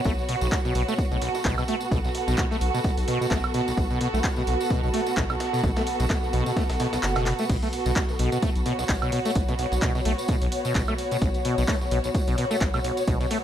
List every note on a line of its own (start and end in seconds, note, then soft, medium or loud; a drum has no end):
0.00 13.44 B3 medium
0.00 13.44 F#4 medium
0.00 1.30 C#5 medium
0.04 0.14 B1 loud
0.04 0.13 A3 medium
0.04 kick loud
0.04 closed hi-hat medium
0.04 tambourine medium
0.19 tambourine soft
0.29 0.36 B2 medium
0.29 closed hi-hat medium
0.29 open hi-hat loud
0.41 0.49 B1 medium
0.41 0.47 B1 medium
0.41 tambourine medium
0.52 kick loud
0.52 snare loud
0.52 clap loud
0.52 closed hi-hat medium
0.52 tambourine medium
0.65 0.73 B2 medium
0.65 snare soft
0.65 tambourine soft
0.75 0.84 B1 medium
0.75 0.82 B2 medium
0.75 closed hi-hat medium
0.75 open hi-hat loud
0.88 0.94 A3 medium
0.88 tambourine medium
0.98 kick loud
0.98 closed hi-hat medium
0.98 tambourine medium
1.11 1.18 B1 loud
1.11 1.17 B2 medium
1.11 tambourine soft
1.22 1.29 B1 medium
1.22 snare medium
1.22 closed hi-hat medium
1.22 open hi-hat loud
1.27 8.74 A4 medium
1.35 snare medium
1.35 tambourine medium
1.44 1.54 B1 medium
1.44 1.56 B2 medium
1.44 kick loud
1.44 snare loud
1.44 clap loud
1.44 closed hi-hat medium
1.44 tambourine medium
1.58 1.64 B2 medium
1.58 snare soft
1.58 tambourine soft
1.58 high woodblock medium
1.68 1.75 A3 medium
1.68 closed hi-hat medium
1.68 open hi-hat loud
1.80 tambourine medium
1.91 2.00 B1 medium
1.91 1.99 B2 medium
1.91 kick loud
1.91 closed hi-hat medium
1.91 tambourine medium
2.04 2.10 B1 medium
2.04 snare soft
2.04 tambourine soft
2.15 snare soft
2.15 closed hi-hat medium
2.15 open hi-hat loud
2.28 2.35 B1 medium
2.28 2.36 B2 medium
2.28 snare soft
2.28 tambourine medium
2.37 2.45 B2 medium
2.37 kick loud
2.37 snare loud
2.37 clap loud
2.37 closed hi-hat medium
2.37 tambourine medium
2.51 2.57 A3 medium
2.51 snare soft
2.51 tambourine soft
2.61 2.70 B1 medium
2.61 closed hi-hat medium
2.61 open hi-hat loud
2.74 2.80 B2 medium
2.74 tambourine medium
2.84 2.92 B1 medium
2.84 kick loud
2.84 closed hi-hat medium
2.84 tambourine medium
2.97 3.05 B1 medium
2.97 open hi-hat medium
2.97 tambourine soft
3.08 3.19 B2 medium
3.08 closed hi-hat medium
3.08 open hi-hat medium
3.21 3.27 B2 medium
3.21 tambourine medium
3.31 3.40 B1 medium
3.31 3.38 A3 medium
3.31 kick loud
3.31 snare loud
3.31 clap loud
3.31 closed hi-hat medium
3.31 tambourine medium
3.43 snare soft
3.43 tambourine soft
3.43 high woodblock medium
3.54 3.62 B2 medium
3.54 open hi-hat loud
3.54 open hi-hat medium
3.67 3.73 B1 medium
3.67 tambourine medium
3.77 3.86 B1 loud
3.77 kick loud
3.77 closed hi-hat medium
3.77 tambourine medium
3.90 3.99 B2 medium
3.90 tambourine soft
4.01 4.08 B2 medium
4.01 closed hi-hat medium
4.01 open hi-hat medium
4.14 4.21 B1 medium
4.14 4.19 A3 medium
4.14 tambourine medium
4.24 kick loud
4.24 snare loud
4.24 clap loud
4.24 closed hi-hat medium
4.24 tambourine medium
4.36 4.43 B2 medium
4.36 snare soft
4.36 tambourine soft
4.47 4.56 B1 medium
4.47 4.55 B1 medium
4.47 closed hi-hat medium
4.47 open hi-hat loud
4.61 tambourine medium
4.70 4.81 B2 medium
4.70 kick loud
4.70 closed hi-hat medium
4.70 tambourine medium
4.83 4.91 B1 loud
4.83 4.89 B2 medium
4.83 tambourine soft
4.94 5.01 A3 medium
4.94 snare medium
4.94 closed hi-hat medium
4.94 open hi-hat loud
5.06 snare medium
5.06 tambourine medium
5.16 5.26 B1 medium
5.16 5.24 B2 medium
5.16 kick loud
5.16 snare loud
5.16 clap loud
5.16 closed hi-hat medium
5.16 tambourine medium
5.30 5.36 B1 medium
5.30 snare soft
5.30 tambourine soft
5.30 high woodblock medium
5.40 snare loud
5.40 closed hi-hat medium
5.40 open hi-hat loud
5.53 5.62 B2 medium
5.53 snare soft
5.53 tambourine medium
5.63 5.72 B1 loud
5.63 kick loud
5.63 closed hi-hat medium
5.63 tambourine medium
5.76 5.82 A3 medium
5.76 snare loud
5.76 closed hi-hat medium
5.76 tambourine soft
5.87 snare soft
5.87 open hi-hat loud
6.00 6.07 B1 medium
6.00 6.05 B2 medium
6.00 closed hi-hat medium
6.00 tambourine medium
6.10 6.17 B1 medium
6.10 kick loud
6.10 snare loud
6.10 clap loud
6.10 closed hi-hat medium
6.10 tambourine medium
6.23 snare soft
6.23 tambourine soft
6.33 6.42 B1 medium
6.33 6.44 B2 medium
6.33 open hi-hat loud
6.46 6.52 B2 medium
6.46 tambourine medium
6.57 6.64 A3 medium
6.57 kick loud
6.57 snare loud
6.57 closed hi-hat medium
6.57 tambourine medium
6.69 6.77 B1 loud
6.69 snare loud
6.69 closed hi-hat medium
6.69 open hi-hat medium
6.69 tambourine soft
6.80 6.87 B2 medium
6.80 snare loud
6.80 closed hi-hat medium
6.80 open hi-hat medium
6.93 6.99 B1 medium
6.93 snare loud
6.93 closed hi-hat medium
6.93 tambourine medium
7.03 7.33 F#1 medium
7.03 snare loud
7.03 clap loud
7.03 closed hi-hat medium
7.03 tambourine medium
7.15 7.25 B2 medium
7.15 snare loud
7.15 closed hi-hat medium
7.15 tambourine soft
7.15 high woodblock medium
7.26 7.34 B2 medium
7.26 clap medium
7.26 open hi-hat loud
7.26 open hi-hat medium
7.39 7.45 A3 medium
7.39 tambourine medium
7.50 7.58 B1 loud
7.50 7.57 B2 medium
7.50 kick loud
7.50 closed hi-hat medium
7.50 crash medium
7.50 tambourine medium
7.62 7.68 A3 medium
7.62 closed hi-hat soft
7.62 tambourine soft
7.73 closed hi-hat medium
7.73 open hi-hat loud
7.86 7.93 B1 medium
7.86 7.91 B2 medium
7.86 closed hi-hat soft
7.86 tambourine medium
7.96 8.03 B1 medium
7.96 kick loud
7.96 snare loud
7.96 clap loud
7.96 closed hi-hat medium
7.96 tambourine medium
8.09 snare soft
8.09 tambourine soft
8.19 8.28 B1 medium
8.19 8.30 B2 medium
8.19 closed hi-hat medium
8.19 open hi-hat loud
8.32 8.38 B2 medium
8.32 closed hi-hat soft
8.32 tambourine medium
8.42 8.50 A3 medium
8.42 kick loud
8.42 closed hi-hat medium
8.42 tambourine medium
8.55 8.63 B1 loud
8.55 closed hi-hat soft
8.55 tambourine soft
8.66 8.73 B2 medium
8.66 snare medium
8.66 closed hi-hat medium
8.66 open hi-hat loud
8.71 13.44 C#5 medium
8.79 8.85 B1 medium
8.79 snare medium
8.79 tambourine medium
8.89 8.98 B1 medium
8.89 kick loud
8.89 snare loud
8.89 clap loud
8.89 closed hi-hat medium
8.89 tambourine medium
9.02 9.11 B2 medium
9.02 snare soft
9.02 tambourine soft
9.02 high woodblock medium
9.12 9.20 B2 medium
9.12 closed hi-hat medium
9.12 open hi-hat loud
9.25 9.31 A3 medium
9.25 closed hi-hat medium
9.25 tambourine medium
9.35 9.45 B1 medium
9.35 kick loud
9.35 closed hi-hat medium
9.35 tambourine medium
9.49 9.54 B2 medium
9.49 snare soft
9.49 closed hi-hat soft
9.49 tambourine soft
9.59 9.66 B1 medium
9.59 snare soft
9.59 closed hi-hat medium
9.59 open hi-hat loud
9.72 9.79 B1 medium
9.72 snare soft
9.72 closed hi-hat soft
9.72 tambourine medium
9.82 9.93 B2 medium
9.82 kick loud
9.82 snare loud
9.82 clap loud
9.82 closed hi-hat medium
9.82 tambourine medium
9.95 10.01 B2 medium
9.95 snare soft
9.95 tambourine soft
10.05 10.14 B1 medium
10.05 10.13 A3 medium
10.05 closed hi-hat medium
10.05 open hi-hat loud
10.18 closed hi-hat soft
10.18 tambourine medium
10.28 10.36 B2 medium
10.28 kick loud
10.28 closed hi-hat medium
10.28 tambourine medium
10.41 10.47 B1 medium
10.41 10.49 B1 loud
10.41 open hi-hat medium
10.41 tambourine soft
10.52 closed hi-hat medium
10.52 open hi-hat loud
10.65 10.73 B2 medium
10.65 tambourine medium
10.75 10.84 B1 medium
10.75 10.82 B2 medium
10.75 kick loud
10.75 snare loud
10.75 clap loud
10.75 closed hi-hat medium
10.75 tambourine medium
10.87 10.94 A3 medium
10.87 snare soft
10.87 tambourine soft
10.87 high woodblock medium
10.98 open hi-hat loud
10.98 open hi-hat medium
11.11 11.17 B2 medium
11.11 closed hi-hat soft
11.11 tambourine medium
11.22 11.29 B1 medium
11.22 11.31 B1 medium
11.22 kick loud
11.22 closed hi-hat medium
11.22 tambourine medium
11.34 closed hi-hat soft
11.34 tambourine soft
11.45 11.56 B2 medium
11.45 closed hi-hat medium
11.45 open hi-hat loud
11.58 11.65 B1 medium
11.58 11.64 B2 medium
11.58 closed hi-hat soft
11.58 tambourine medium
11.68 11.75 A3 medium
11.68 kick loud
11.68 snare loud
11.68 clap loud
11.68 closed hi-hat medium
11.68 tambourine medium
11.81 snare soft
11.81 tambourine soft
11.91 12.00 B1 medium
11.91 11.99 B2 medium
11.91 closed hi-hat medium
11.91 open hi-hat loud
12.04 12.10 B1 medium
12.04 closed hi-hat soft
12.04 tambourine medium
12.15 kick loud
12.15 closed hi-hat medium
12.15 tambourine medium
12.27 12.35 B1 loud
12.27 12.36 B2 medium
12.27 closed hi-hat soft
12.27 tambourine soft
12.38 12.45 B2 medium
12.38 snare medium
12.38 closed hi-hat medium
12.38 open hi-hat loud
12.51 12.56 A3 medium
12.51 snare medium
12.51 tambourine medium
12.61 12.70 B1 medium
12.61 kick loud
12.61 snare loud
12.61 clap loud
12.61 closed hi-hat medium
12.61 tambourine medium
12.74 12.80 B2 medium
12.74 snare soft
12.74 tambourine soft
12.74 high woodblock medium
12.84 12.92 B1 medium
12.84 closed hi-hat medium
12.84 open hi-hat loud
12.97 closed hi-hat soft
12.97 tambourine medium
13.07 13.17 B1 loud
13.07 13.18 B2 medium
13.07 kick loud
13.07 closed hi-hat medium
13.07 tambourine medium
13.21 13.26 B2 medium
13.21 snare soft
13.21 closed hi-hat soft
13.21 tambourine soft
13.31 13.38 A3 medium
13.31 snare soft
13.31 closed hi-hat medium
13.31 open hi-hat loud